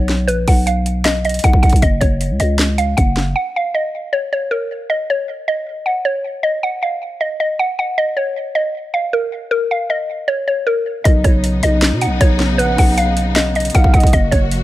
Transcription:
Already playing: 808-style bass B1, synth pluck C#5
0.09 snare
0.27 808-style bass A#1, synth pluck B4, closed hi-hat
0.48 808-style bass B1, synth pluck F#5, kick, open hi-hat
0.67 synth pluck F5, closed hi-hat
0.86 closed hi-hat
1.05 synth pluck D#5, snare, clap, closed hi-hat
1.25 synth pluck D#5, closed hi-hat
1.29 closed hi-hat
1.34 closed hi-hat
1.39 closed hi-hat
1.44 808-style bass B1, synth pluck F#5, kick, closed hi-hat
1.53 808-style bass B1, kick
1.63 808-style bass B1, synth pluck F#5, kick, closed hi-hat
1.70 808-style bass B1, kick, closed hi-hat
1.76 closed hi-hat
1.82 808-style bass F#1, synth pluck D#5, kick, closed hi-hat
2.01 808-style bass F#1, synth pluck C#5, kick, closed hi-hat
2.21 closed hi-hat
2.30 808-style bass C#2
2.40 808-style bass C#2, synth pluck D#5, closed hi-hat
2.59 snare, clap, closed hi-hat
2.78 synth pluck F5, closed hi-hat
2.97 808-style bass F#1, synth pluck F#5, kick, closed hi-hat
3.17 snare
3.36 synth pluck F#5
3.56 synth pluck F5
3.74 synth pluck D#5
4.13 synth pluck C#5
4.33 synth pluck C#5
4.51 synth pluck A#4
4.90 synth pluck D#5
5.10 synth pluck C#5
5.48 synth pluck D#5
5.86 synth pluck F#5
6.05 synth pluck C#5
6.43 synth pluck D#5
6.63 synth pluck F#5
6.83 synth pluck F5
7.21 synth pluck D#5
7.40 synth pluck D#5
7.59 synth pluck F#5
7.79 synth pluck F#5
7.98 synth pluck D#5
8.17 synth pluck C#5
8.55 synth pluck D#5
8.94 synth pluck F5
9.13 synth pluck A#4
9.51 synth pluck A#4
9.71 synth pluck F5
9.90 synth pluck D#5
10.28 synth pluck C#5
10.48 synth pluck C#5
10.67 synth pluck A#4
11.04 808-style bass B1, string section C#3 B3 D#4, synth pluck D#5, kick, closed hi-hat
11.24 808-style bass B1, synth pluck C#5, kick, closed hi-hat
11.44 closed hi-hat
11.63 808-style bass B1, synth pluck D#5, closed hi-hat
11.82 snare, clap, closed hi-hat
11.92 808-style bass B2
12.01 synth pluck F#5, closed hi-hat
12.06 808-style bass B1
12.21 808-style bass B1, synth pluck C#5, kick, closed hi-hat
12.40 snare
12.58 808-style bass A#1, synth pluck B4, soft synth lead F#5, closed hi-hat
12.78 808-style bass B1, synth pluck F#5, kick, open hi-hat
12.98 synth pluck F5, closed hi-hat
13.17 closed hi-hat
13.36 synth pluck D#5, snare, clap, closed hi-hat
13.55 synth pluck D#5, closed hi-hat
13.60 closed hi-hat
13.65 closed hi-hat
13.70 closed hi-hat
13.74 808-style bass B1, soft synth lead F5, synth pluck F#5, kick, closed hi-hat
13.84 808-style bass B1, kick
13.93 808-style bass B1, soft synth lead D#5, synth pluck F#5, kick, closed hi-hat
14.00 808-style bass B1, kick, closed hi-hat
14.07 closed hi-hat
14.13 808-style bass F#1, string section F#3 A#3 F#4, synth pluck D#5, kick, closed hi-hat
14.31 808-style bass F#1, synth pluck C#5, kick, closed hi-hat
14.51 closed hi-hat

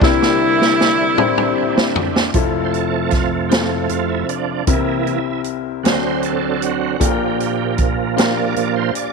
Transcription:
Already playing: tonewheel organ D3 C4 D4
0.00 upright piano C2 C3 C4 D4 E4 G4 A#4, tonewheel organ G3 E4, saxophone section G3 A#3 E4, kick, snare
0.22 snare
0.62 snare
0.81 snare
1.18 upright piano C4 D4 E4 G4 C5, mid tom
1.38 mid tom
1.77 snare
1.96 floor tom
2.16 snare
2.32 upright piano F1 F2 C4 E4 F4, tonewheel organ F2 F3 A3, kick, closed hi-hat
2.36 upright piano A4
2.65 tonewheel organ C5
2.70 tonewheel organ A4, closed hi-hat
3.11 tonewheel organ F4, kick, snare, closed hi-hat
3.49 upright piano C4 E4 F4 A4, tonewheel organ G4, snare, closed hi-hat
3.89 tonewheel organ F2 C3 A3 F4, closed hi-hat
4.09 tonewheel organ E4
4.29 tonewheel organ D4, closed hi-hat
4.67 upright piano C2 C3 C4 E4 G4 A#4, tonewheel organ C3 E3 A#3 E4, kick, closed hi-hat
5.07 closed hi-hat
5.44 closed hi-hat
5.83 upright piano D2 D3 C4 D4 F#4 A4, tonewheel organ D3 F#3 C4 C5, snare, closed hi-hat
6.23 tonewheel organ A4, closed hi-hat
6.61 tonewheel organ F#4, closed hi-hat
7.00 upright piano A#1 A#2 D4 F4 G4 A4, tonewheel organ A#2 F3 A#3 G4, kick, closed hi-hat
7.07 upright piano A#4
7.40 closed hi-hat
7.78 kick, closed hi-hat
8.16 upright piano D4 F4 G4 A#4, tonewheel organ C5, snare, closed hi-hat
8.37 tonewheel organ D5
8.56 tonewheel organ A#2 F3 A#3 D5, closed hi-hat
8.76 tonewheel organ C5
8.95 tonewheel organ D5, closed hi-hat

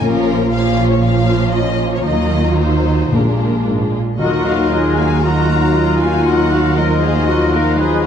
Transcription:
0.01 double bass section A#1, timpani A#2, cello section A#2, viola section F3 A#3, violin section C#4 F4 A#4
0.53 viola section F3 A#3, violin section C#4 F4 F5
0.91 violin section C#5
1.03 viola section F3 A#3, violin section C#4 F4 F5
1.55 violin section D#5
1.94 violin section C#5
2.06 double bass section D#2, cello section D#3, viola section F#3 A#3, violin section D#4 F4 D#5
2.59 violin section C5
3.12 double bass section A#1, timpani A#2, cello section A#2, viola section G#3 A#3, violin section D4 F4 A#4
3.65 cello section G#2
3.92 cello section A#2
4.19 double bass section D#2, timpani D#3, viola section F#3 F4, french horn section F#3 D#4, violin section D#4 D#5, clarinet F4, cello section F#4, oboe A#4, flute section F#6
4.45 viola section A#3 D#4, violin section F#4 F5
4.71 viola section F#3 F4, violin section D#4 D#5, cello section G#4
4.98 viola section A#3 D#4, violin section F#4 F5 G#5
5.22 viola section F#3 F4, french horn section F#3 D#4, violin section D#4 D#5 A#5, clarinet F4, cello section F#4, oboe A#4, flute section F#6
5.49 viola section A#3 D#4, violin section F#4 F5
5.74 viola section F#3 F4, violin section D#4 D#5, cello section F4
6.00 viola section A#3 D#4, violin section F#4 F5 G#5
6.25 french horn section F#3 D#4, viola section F#3 F4, violin section D#4 D#5 F#5, clarinet F4, cello section F#4, oboe A#4, flute section F#6
6.52 viola section A#3 D#4, violin section F#4 F5
6.77 french horn section F3 D#4, viola section F#3 F4, violin section D#4 D#5, clarinet F4, cello section A#4, oboe A#4, flute section F#6
7.02 viola section A#3 D#4, violin section F#4 F5, cello section G#4
7.27 viola section F#3 F4, violin section D#4 D#5, cello section F#4
7.53 viola section A#3 D#4, violin section F#4 F5, cello section A#4
7.79 viola section F#3 F4, violin section D#4 D#5, cello section G#4, oboe B4

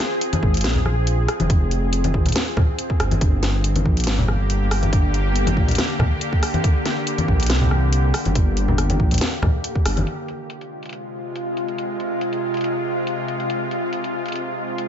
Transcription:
Already playing: synth drone F3 C4 G#4
0.21 closed hi-hat
0.33 closed hi-hat, high conga
0.43 detuned saw bass G#1, kick
0.54 closed hi-hat
0.57 closed hi-hat
0.61 detuned saw bass A#1, snare, closed hi-hat
0.64 closed hi-hat
0.75 low conga
0.85 cross-stick, high conga
1.07 closed hi-hat
1.28 cross-stick, closed hi-hat
1.40 detuned saw bass F1, closed hi-hat, high conga
1.50 kick, closed hi-hat
1.71 closed hi-hat
1.93 closed hi-hat
2.04 closed hi-hat, high conga
2.14 detuned saw bass G#1, kick
2.26 closed hi-hat, low conga
2.29 closed hi-hat
2.32 snare, closed hi-hat
2.36 closed hi-hat
2.57 kick, cross-stick, high conga, low conga
2.79 closed hi-hat
2.90 kick
3.00 detuned saw bass G1, cross-stick, closed hi-hat
3.11 closed hi-hat, high conga
3.21 detuned saw bass G1, synth drone D3 A#3 G4, kick, closed hi-hat
3.43 snare, closed hi-hat
3.64 closed hi-hat
3.76 closed hi-hat, high conga
3.86 detuned saw bass A#1, kick
3.97 closed hi-hat
4.00 closed hi-hat
4.04 snare, closed hi-hat
4.07 detuned saw bass G1, closed hi-hat
4.19 low conga
4.28 cross-stick, high conga
4.40 detuned saw bass G1
4.50 closed hi-hat
4.71 cross-stick, open hi-hat
4.82 closed hi-hat, high conga
4.93 kick, closed hi-hat
5.14 closed hi-hat
5.36 closed hi-hat
5.47 closed hi-hat, high conga
5.57 detuned saw bass A#1, kick
5.68 closed hi-hat, low conga
5.71 closed hi-hat
5.75 snare, closed hi-hat
5.78 closed hi-hat
5.99 kick, cross-stick, high conga, low conga
6.21 closed hi-hat
6.33 kick
6.43 cross-stick, open hi-hat
6.54 closed hi-hat, high conga
6.64 kick, closed hi-hat
6.86 snare, closed hi-hat
7.07 closed hi-hat
7.18 closed hi-hat, high conga
7.28 detuned saw bass A#1, kick
7.40 closed hi-hat
7.43 closed hi-hat
7.46 snare, closed hi-hat
7.50 detuned saw bass C2, closed hi-hat
7.61 low conga
7.71 cross-stick, high conga
7.93 closed hi-hat
8.14 cross-stick, open hi-hat
8.25 detuned saw bass G1, closed hi-hat, high conga
8.35 kick, closed hi-hat
8.57 closed hi-hat
8.68 low conga
8.78 cross-stick, closed hi-hat
8.90 closed hi-hat, high conga
9.00 detuned saw bass A#1, kick
9.11 closed hi-hat, low conga
9.14 closed hi-hat
9.18 snare, closed hi-hat
9.21 closed hi-hat
9.42 kick, cross-stick, high conga, low conga
9.64 closed hi-hat
9.75 kick
9.86 detuned saw bass G1, cross-stick, open hi-hat
9.97 closed hi-hat, high conga
10.07 synth drone C3 G#3 F4, closed hi-hat
10.28 closed hi-hat
10.50 closed hi-hat
10.61 closed hi-hat
10.83 closed hi-hat
10.86 closed hi-hat
10.89 closed hi-hat
10.93 closed hi-hat
11.36 closed hi-hat
11.57 closed hi-hat
11.68 closed hi-hat
11.78 closed hi-hat
12.00 closed hi-hat
12.21 closed hi-hat
12.33 closed hi-hat
12.54 closed hi-hat
12.57 closed hi-hat
12.61 closed hi-hat
12.64 closed hi-hat
13.07 closed hi-hat
13.28 closed hi-hat
13.40 closed hi-hat
13.50 closed hi-hat
13.71 closed hi-hat
13.93 closed hi-hat
14.04 closed hi-hat
14.26 closed hi-hat
14.28 closed hi-hat
14.32 closed hi-hat
14.36 closed hi-hat
14.78 closed hi-hat

